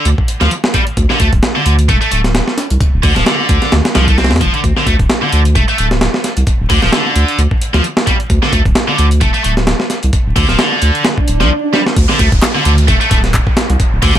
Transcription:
0.05 sub bass D2, closed hi-hat
0.18 kick
0.28 closed hi-hat
0.41 sub bass D2, distorted electric guitar F3, snare, closed hi-hat
0.51 closed hi-hat
0.64 snare
0.74 distorted electric guitar G3, kick, closed hi-hat
0.87 closed hi-hat
0.97 sub bass D2, kick, closed hi-hat
1.10 distorted electric guitar D3, snare
1.20 sub bass D2, distorted electric guitar A3, kick, closed hi-hat
1.33 sub bass D1, kick, closed hi-hat
1.43 snare, closed hi-hat
1.56 distorted electric guitar D3
1.66 sub bass D2, distorted electric guitar D3, closed hi-hat
1.79 closed hi-hat
1.89 sub bass D1, distorted electric guitar A3, kick, closed hi-hat
2.01 distorted electric guitar A3, closed hi-hat
2.11 sub bass D1, distorted electric guitar A3, closed hi-hat
2.24 snare, closed hi-hat
2.35 snare, closed hi-hat
2.47 snare
2.58 snare, closed hi-hat
2.70 sub bass C2, closed hi-hat
2.80 sub bass D1, kick, closed hi-hat
2.94 sub bass D1
3.03 sub bass D2, distorted electric guitar D3, kick, closed hi-hat, open hi-hat
3.16 sub bass D1, distorted electric guitar F3, snare, closed hi-hat
3.26 distorted electric guitar D3, snare, closed hi-hat
3.49 sub bass D2, kick, closed hi-hat
3.62 snare, closed hi-hat
3.72 sub bass D2, snare, closed hi-hat
3.85 snare, closed hi-hat
3.95 sub bass C2, distorted electric guitar F3, snare, closed hi-hat
4.08 distorted electric guitar A3, kick, closed hi-hat
4.18 distorted electric guitar C4, snare, closed hi-hat
4.24 snare, closed hi-hat
4.31 sub bass F2, snare, closed hi-hat
4.36 snare, closed hi-hat
4.41 sub bass D1, distorted electric guitar F3, kick, closed hi-hat
4.54 distorted electric guitar D3, closed hi-hat
4.64 sub bass D2, kick, closed hi-hat
4.77 distorted electric guitar D3, snare
4.87 sub bass D2, distorted electric guitar A3, kick, closed hi-hat
4.99 sub bass D1, kick, closed hi-hat
5.10 snare, closed hi-hat
5.22 distorted electric guitar D3
5.33 sub bass D2, distorted electric guitar D3, closed hi-hat
5.45 closed hi-hat
5.55 sub bass D1, distorted electric guitar A3, kick, closed hi-hat
5.68 distorted electric guitar A3, closed hi-hat
5.78 sub bass D1, distorted electric guitar A3, closed hi-hat
5.91 snare, closed hi-hat
6.01 snare, closed hi-hat
6.14 snare
6.24 snare, closed hi-hat
6.37 sub bass C2, closed hi-hat
6.47 sub bass D1, kick, closed hi-hat
6.60 sub bass D1
6.70 sub bass D2, distorted electric guitar D3, kick, closed hi-hat, open hi-hat
6.82 sub bass D1, distorted electric guitar F3, snare, closed hi-hat
6.92 distorted electric guitar D3, snare, closed hi-hat
7.16 sub bass D2, closed hi-hat
7.28 closed hi-hat
7.38 sub bass D2, closed hi-hat
7.51 kick
7.61 closed hi-hat
7.74 sub bass D2, distorted electric guitar F3, snare, closed hi-hat
7.84 closed hi-hat
7.97 snare
8.07 distorted electric guitar G3, kick, closed hi-hat
8.20 closed hi-hat
8.30 sub bass D2, kick, closed hi-hat
8.43 distorted electric guitar D3, snare
8.52 sub bass D2, distorted electric guitar A3, kick, closed hi-hat
8.66 sub bass D1, kick, closed hi-hat
8.75 snare, closed hi-hat
8.88 distorted electric guitar D3
8.98 sub bass D2, distorted electric guitar D3, closed hi-hat
9.11 closed hi-hat
9.21 sub bass D1, distorted electric guitar A3, kick, closed hi-hat
9.34 distorted electric guitar A3, closed hi-hat
9.44 sub bass D1, distorted electric guitar A3, closed hi-hat
9.57 snare, closed hi-hat
9.67 snare, closed hi-hat
9.80 snare
9.90 snare, closed hi-hat
10.03 sub bass C2, closed hi-hat
10.13 sub bass D1, kick, closed hi-hat
10.26 sub bass D1
10.36 sub bass D2, distorted electric guitar D3, kick, closed hi-hat, open hi-hat
10.49 sub bass D1, distorted electric guitar F3, snare, closed hi-hat
10.59 distorted electric guitar D3, snare, closed hi-hat
10.82 sub bass D2, closed hi-hat
10.95 closed hi-hat
11.05 snare, closed hi-hat, swell
11.18 kick
11.28 sub bass D1, closed hi-hat
11.40 sub bass C2, distorted electric guitar F3, snare, closed hi-hat
11.74 distorted electric guitar G3, snare
11.86 snare
11.96 sub bass D2, kick, closed hi-hat, downlifter
12.09 distorted electric guitar D3, snare
12.19 sub bass D2, distorted electric guitar A3, kick, closed hi-hat
12.32 sub bass D1, kick, closed hi-hat
12.42 snare, clap, closed hi-hat
12.55 distorted electric guitar D3
12.65 sub bass D2, distorted electric guitar D3, closed hi-hat
12.78 closed hi-hat
12.88 sub bass D1, distorted electric guitar A3, kick, closed hi-hat
13.01 distorted electric guitar A3, closed hi-hat
13.11 sub bass D1, distorted electric guitar A3, kick, closed hi-hat
13.24 snare, closed hi-hat
13.34 kick, clap, closed hi-hat
13.47 kick
13.57 snare, closed hi-hat
13.70 sub bass C2, closed hi-hat
13.80 sub bass D1, kick, closed hi-hat
13.93 sub bass D1
14.02 sub bass D2, distorted electric guitar D3, kick, closed hi-hat, open hi-hat
14.15 sub bass D1, distorted electric guitar F3, snare, closed hi-hat

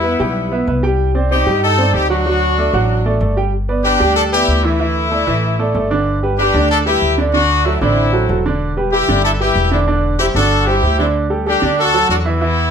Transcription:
Already playing: upright bass E2, horn section B3 E4
0.03 grand piano B3 B4 E5
0.20 upright bass B1, grand piano G3 G4 G5
0.52 grand piano B3 B4 E5
0.67 upright bass C2, grand piano B3 B4 E5
0.83 grand piano G3 G4 G5
1.15 grand piano C4 C5 D5
1.31 grand piano C4 C5 D5, horn section D#4 G4
1.46 upright bass G2, grand piano G3 G4 G5
1.64 horn section D#4 A4
1.78 grand piano C4 C5 D5
1.94 upright bass D2, horn section D#4 G4
2.10 grand piano F#3 F#4 F#5, horn section D4 F#4
2.26 grand piano F#3 F#4 F#5
2.58 grand piano A3 A4 D5
2.73 upright bass A1, grand piano F#3 F#4 F#5
3.05 grand piano A3 A4 D5
3.21 upright bass G1, grand piano A3 A4 D5
3.37 grand piano G3 G4 G5
3.69 grand piano B3 B4 D5
3.85 grand piano B3 B4 D5, horn section D4 G4
4.00 upright bass D2, grand piano G3 G4 G5
4.17 horn section D4 A4
4.32 grand piano B3 B4 D5, horn section E4 G4
4.48 upright bass D2
4.64 grand piano E3 E4 E5, horn section A3 E4
4.80 grand piano E3 E4 E5
5.11 grand piano A3 A4 D5
5.27 upright bass A1, grand piano E3 E4 E5
5.59 grand piano A3 A4 D5
5.75 upright bass G1, grand piano A3 A4 D5
5.91 grand piano D3 D4 D5
6.23 grand piano G3 G4 B4
6.39 grand piano G3 G4 B4, horn section D4 G4
6.54 upright bass D2, grand piano D3 D4 D5
6.71 horn section D4 A4
6.86 grand piano G3 G4 B4, horn section E4 G4
7.02 upright bass D2
7.18 grand piano D3 D4 D5
7.34 grand piano D3 D4 D5, horn section D4 F#4
7.66 grand piano F#3 F#4 A4, horn section A3 E4
7.81 upright bass A1, grand piano D3 D4 D5, horn section C4 E4
8.13 grand piano F#3 F#4 A4
8.29 upright bass E1, grand piano F#3 F#4 A4
8.46 grand piano D3 D4 D5
8.77 grand piano G3 G4 B4
8.93 grand piano G3 G4 B4, horn section E4 G4
9.08 upright bass G1, grand piano D3 D4 D5
9.25 horn section E4 A4
9.40 grand piano G3 G4 B4, horn section E4 G4
9.55 upright bass E1
9.71 grand piano D3 D4 D5, horn section C4 E4
9.87 grand piano D3 D4 D5
10.19 grand piano G3 G4 C5, horn section E4 G4
10.35 upright bass G1, grand piano D3 D4 D5, horn section F#4 A4
10.67 grand piano G3 G4 C5, horn section E4 G4
10.82 upright bass D2, grand piano G3 G4 C5
10.99 grand piano D3 D4 D5, horn section C4 E4
11.30 grand piano G3 G4 A4
11.46 grand piano G3 G4 A4, horn section D4 G4
11.62 upright bass D2, grand piano D3 D4 D5
11.79 horn section F#4 A4
11.94 grand piano F#3 F#4 A4
12.09 upright bass E2, horn section D4 F#4
12.25 grand piano E3 E4 E5, horn section B3 E4
12.41 grand piano E3 E4 E5

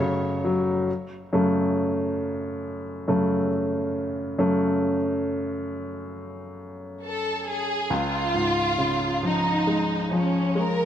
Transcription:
Already playing: grand piano F#1 F#2 F#3 A3
0.00 grand piano C#3
0.45 grand piano F#3
1.33 grand piano F#2 C#3 A3
3.08 grand piano F#2 C#3 A3
4.39 grand piano F#2 C#3 A3
7.03 violin section A4
7.48 violin section G#4
7.90 grand piano C#2, violin section F4
8.34 grand piano G#2
8.78 grand piano C#3
9.23 grand piano F3, violin section D#4
9.67 grand piano G#3
10.11 grand piano F3, violin section C#4
10.55 grand piano G#3, violin section A#4

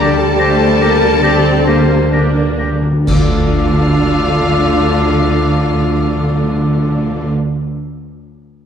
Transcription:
Already playing: double bass section D2, cello section D3, harp D3 F3 D4 D5, viola section G3 G4, clarinet D5
0.00 timpani D3, french horn section G3, harp G4, oboe G4, violin section A4 A5, flute A#6
0.20 harp G5
0.35 timpani D3
0.39 timpani D3, viola section A3, oboe G4, clarinet C5, flute A#6
0.51 timpani D3
0.60 timpani D3, harp D5
0.68 timpani D3
0.78 timpani D3, viola section A#3, oboe G4, clarinet A#4, flute A#6
0.86 timpani D3
0.95 timpani D3
1.02 timpani D3, harp D4
1.12 timpani D3
1.21 timpani D3, harp A#3, viola section C4, oboe G4, clarinet D5, flute A#6
1.30 timpani D3
1.40 timpani D3
1.45 timpani D3, harp D4
1.58 timpani D3
1.65 timpani D3, viola section A#3, oboe G4, clarinet C5, flute A#6
1.76 timpani D3
1.84 timpani D3
1.90 harp G5
1.94 timpani D3
2.03 timpani D3
2.11 timpani D3, viola section A#3 D4, oboe G4, clarinet A#4, flute A#6
2.22 timpani D3
2.32 timpani D3, harp D5
2.42 timpani D3
2.52 timpani D3
2.59 timpani D3, oboe G4, harp A4, flute A#6
2.72 timpani D3
2.82 timpani D3, harp D4
2.92 timpani D3
3.06 double bass section D2, timpani D3, cello section D3, harp D3, viola section A3 D4, clarinet D4, french horn section F4, violin section F4 F5, oboe A4, flute D6, concert bass drum, crash
3.13 timpani D3, harp D4
3.19 timpani D3, harp F4
3.26 timpani D3, harp A4
3.33 timpani D3, harp F5
3.39 timpani D3
3.45 timpani D3
3.52 timpani D3
3.59 timpani D3
3.66 timpani D3
3.72 timpani D3
3.79 timpani D3
3.86 timpani D3
3.92 timpani D3
3.98 timpani D3
4.06 timpani D3
4.12 timpani D3
4.19 timpani D3
4.26 timpani D3
4.33 timpani D3
4.40 timpani D3
4.46 timpani D3
4.53 timpani D3
4.59 timpani D3
4.67 timpani D3
4.73 timpani D3
4.79 timpani D3
4.85 timpani D3
4.92 timpani D3
4.99 timpani D3
5.06 timpani D3
5.13 timpani D3
5.20 timpani D3
5.27 timpani D3
5.34 timpani D3
5.41 timpani D3
5.48 timpani D3
5.54 timpani D3
5.61 timpani D3
5.67 timpani D3
5.74 timpani D3
5.80 timpani D3
5.88 timpani D3
5.94 timpani D3
6.01 timpani D3
6.08 timpani D3
6.15 timpani D3
6.22 timpani D3
6.28 timpani D3
6.35 timpani D3
6.42 timpani D3
6.49 timpani D3
6.56 timpani D3
6.63 timpani D3
6.70 timpani D3
6.76 timpani D3
6.83 timpani D3
6.90 timpani D3
6.97 timpani D3
7.03 timpani D3
7.10 timpani D3
7.16 timpani D3
7.23 timpani D3

